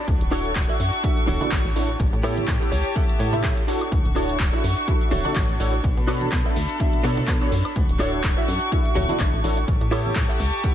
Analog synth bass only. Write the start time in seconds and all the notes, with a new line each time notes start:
0.08 D2
0.21 D1
0.56 D1
0.80 F#2
1.28 D1
1.41 A1
1.52 A1
1.65 A1
1.76 A1
2.00 A1
2.13 A2
2.48 A2
2.72 C#2
3.09 A2
3.20 A2
3.92 D2
4.05 D1
4.40 D1
4.64 F#2
5.12 D1
5.36 A1
5.49 A1
5.60 A1
5.84 B1
5.97 B2
6.32 B2
6.56 D2
6.93 B2
7.04 B2
7.28 B2
7.52 F#2
7.76 D2
7.89 D1
8.24 D1
8.48 F#2
8.96 D1
9.20 A1
9.33 A1
9.44 A1
9.68 A1
9.81 A2
10.16 A2
10.40 C#2